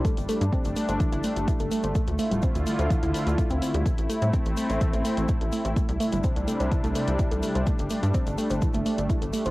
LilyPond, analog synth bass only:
\new Staff \with { instrumentName = "Analog synth bass" } { \clef bass \time 4/4 \key g \mixolydian \tempo 4 = 126 r16 g,,16 r16 g,16 r16 g,,16 r16 g,,16 r16 g,,16 r16 g,,16 r16 g,,16 r16 g,,16 | r16 d,16 r16 d,,16 r16 d,16 r16 d,16 r16 d,16 r16 d,16 r16 d,16 r16 d,16 | r16 a,,16 r16 a,16 r16 a,,16 r16 a,,16 r16 a,,16 r16 a,,16 r16 a,,16 r16 a,,16 | r16 c,16 r16 g,,16 r16 c,16 r16 c,16 r16 c,16 r16 c,16 r16 c,16 r16 c,16 |
r16 g,,16 r16 g,16 r16 g,,16 r16 g,,16 r16 g,,16 r16 g,,16 r16 g,,16 r16 g,,16 | }